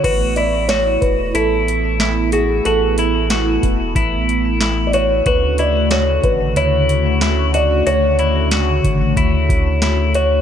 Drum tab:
CC |x-------|--------|--------|--------|
HH |xxxxxxxx|xxxxxxxx|xxxxxxxx|xxxxxxxx|
SD |--o---o-|--o---o-|--o---o-|--o---o-|
BD |o--o----|---oo---|o--o----|---ooo--|